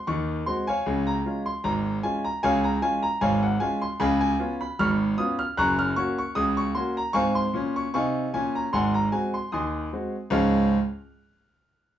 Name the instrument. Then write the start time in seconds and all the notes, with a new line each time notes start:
grand piano
0.07 D#2 D#3 C#6
0.46 G#3 C4 F#4 C6
0.67 C#5 F5 G#5
0.86 C#2 C#3
1.07 A#5
1.26 G#3 C#4 F4
1.46 C6
1.64 G#1 G#2 A#5
2.03 G#3 C#4 F4 G#5
2.24 A#5
2.43 C#2 C#3 C#5 F5 G#5
2.64 A#5
2.82 G#3 C#4 F4 G#5
3.03 A#5
3.21 G#1 G#2 C#5 F5 G#5
3.43 F#5
3.60 G#3 C#4 F4 G#5
3.82 C6
4.00 C#2 C#3 F5 G#5 B5
4.21 G#5
4.39 B3 C#4 F4
4.61 B5
4.79 G#1 G#2 B5 C#6 F6
5.18 B3 C#4 F4 D#6
5.39 F6
5.57 F#1 F#2 A#5 C#6 F#6
5.79 F6
5.96 A#3 C#4 F#4 C#6
6.18 C#6
6.35 C#2 C#3 D#6
6.57 C#6
6.75 A#3 C#4 F#4 C6
6.97 A#5
7.13 G#2 C4 F5 G#5 C#6
7.35 C6
7.54 A#2 C#4
7.76 C#6
7.94 C3 D#4 F5 G#5 C#6
8.34 A#2 C#4 G#5
8.55 A#5
8.73 G#1 G#2 F#5 G#5 C6
8.94 A#5
9.12 G#3 C4 F#4 G#5
9.34 C6
9.52 D#2 D#3 G#5 C6 D#6
9.93 G#3 C4 F#4
10.30 C#2 G#2 F3 G#3 C#4 F4 F6